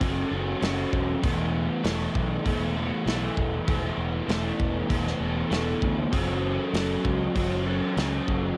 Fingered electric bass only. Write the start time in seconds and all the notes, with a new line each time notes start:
0.01 F#1
0.31 F#1
0.62 F#1
0.93 E1
1.24 E1
1.84 E1
2.15 B1
2.46 E1
3.06 B1
3.37 E1
3.68 E1
3.97 E1
4.28 E1
4.60 E1
4.90 E1
5.20 E1
5.51 E1
5.82 D2
6.13 F#1
6.73 F#1
7.05 C#2
7.36 F#1
7.97 C#2
8.28 F#1